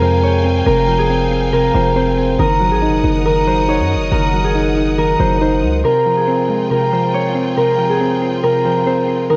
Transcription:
Already playing: F2 C3 F3 G#3 C4 G#4 A#4 F5 G5 G#5
0.02 F3 C5
0.23 C#5
0.44 C4
0.66 F1 C3 A#4
0.88 F3
0.99 G#4
1.10 C4
1.31 C4
1.53 C3 A#4
1.74 F1 F3 C5
1.96 C4 C5
2.17 C4
2.39 F#1 D#3 A#4 F#5 D#6
2.60 F#3
2.71 G#1 G#4
2.82 D#4
2.88 F#1
3.04 F#1 D#4
3.25 D#3 A#4
3.47 F#3 C5
3.68 D#4 C#5
3.79 F#2
3.90 D#4
3.96 F#1
4.12 F#1 D#3 A#4
4.34 F#3
4.44 G#4
4.55 D#4
4.76 D#4
4.98 D#3 A#4
5.20 F#1 F#3 C5
5.41 D#4 C5
5.63 C#2 D#4
5.84 C3 F4 G#4 A#4 G5
6.06 F3
6.17 G#4
6.28 C4
6.49 G#3
6.70 C3 A#4
6.92 F3 C5
7.14 C#5
7.35 C4
7.57 C3 A#4
7.78 F3
7.89 G#4
8.01 C4
8.22 C4
8.43 C3 A#4
8.65 F3 C5
8.87 C4 C5
9.08 C4
9.30 D#3 D#4 A#4 F#5

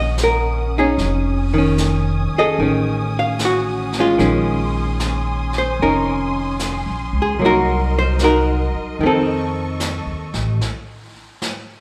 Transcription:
Already playing: A#1 D#3 A#3 C#4 A#4 F#5 D#6
0.00 D#5
0.18 snare, hi-hat pedal
0.24 A#4
0.78 C#4 D#4 G#4
0.98 F1 G#5, brush sweep, snare
1.54 D#3
1.58 C#4
1.78 snare, hi-hat pedal
2.34 muted upright bass stroke
2.38 G#4 A4 D#5
2.58 A1 D#3 C#4, brush sweep
3.19 F5
3.39 snare, hi-hat pedal
3.45 F#4
3.92 snare
3.99 G#3 C#4 F4
4.18 A#1 D#3 G#3 C#4 G#5 C6, brush sweep, snare
5.00 snare, hi-hat pedal
5.53 snare
5.58 C5
5.79 F1 C#4 D#4 A#4, brush sweep
6.59 snare, hi-hat pedal
6.86 A#1
7.13 C#2
7.22 G#4
7.39 C2 F#3 A#3 A#4 D#5, brush sweep
7.45 D#4 F#4 A#4
7.99 C5
8.19 F#4, snare, hi-hat pedal
8.24 D#4 A#4
8.75 muted upright bass stroke
8.98 F2 D#3 A4 C#6, brush sweep
9.03 A3 C4 D#4 A4
9.80 snare, hi-hat pedal
10.06 D#2
10.34 A1, snare
10.61 brush sweep, snare
11.42 snare

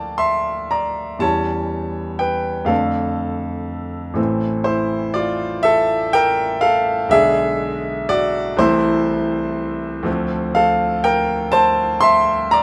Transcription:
Already playing: D2 F3 A3 D4 A4 A#4 D5 F5 G5 A5
0.18 E5 C6
0.71 D5 A#5
1.19 E2 E3 G3 C#4 C#5 A5
2.19 B4 G5
2.65 F2 D3 A3 D4 A4 F5
4.14 A1 E3 A3 C4
4.64 E4 C5
5.14 F4 D5
5.63 A4 E5
6.13 A#4 G5
6.61 A4 F5
7.09 B1 D3 G#3 D4 G#4 E5
8.09 F#4 D5
8.57 C2 E3 A3 C4 E4 C5
10.03 D2 F3 A3 C4
10.55 A4 F5
11.04 A#4 G5
11.52 C5 A5
12.01 E5 C6
12.51 D5 A#5

